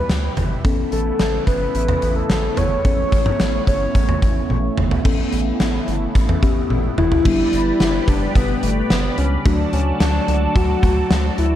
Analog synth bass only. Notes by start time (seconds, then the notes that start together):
0.10 D2
0.37 G1
0.65 A1
0.92 A1
1.20 A1
1.47 G1
1.75 A1
2.02 A1
2.30 A1
2.58 G1
2.85 A1
3.12 A1
3.40 A1
3.67 G1
3.95 A1
4.22 A1
4.50 A1
4.78 G1
5.05 A1
5.33 A1
5.60 A1
5.88 G1
6.15 A1
6.43 A1
6.70 A1
6.98 F#1
7.25 G1
7.53 G1
7.80 G1
8.08 F#1
8.35 G1
8.63 G1
8.90 G1
9.18 C#2
9.46 D2
9.73 D2
10.00 D2
10.28 C#2
10.56 D2
10.83 D2
11.11 D2
11.38 D2